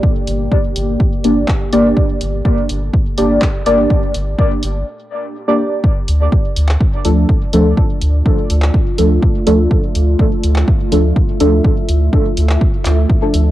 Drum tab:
HH |--x---x---x---x-|--x---x---x---x-|--x---x---------|--x---x---x---x-|
CP |------------x---|------------x---|----------------|-------x--------|
BD |o---o---o---o---|o---o---o---o---|o---o-----------|o---o---o---o---|

HH |--x---x---x---x-|--x---x---x---x-|--x---x---x---x-|
CP |-------x--------|-------x--------|-------x--x-----|
BD |o---o---o---o---|o---o---o---o---|o---o---o---o---|